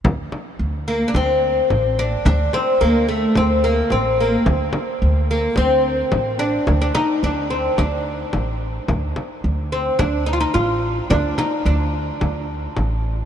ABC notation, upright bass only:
X:1
M:4/4
L:1/8
Q:1/4=108
K:none
V:1 name="Upright bass" clef=bass
D,, z D,,2 D,,2 A,,,2 | D,, z D,,2 D,,2 A,,,2 | D,, z D,,2 D,,2 A,,,2 | D,, z D,,2 D,,2 A,,,2 |
D,, z D,,2 D,,2 A,,,2 | D,, z D,,2 D,,2 A,,,2 |]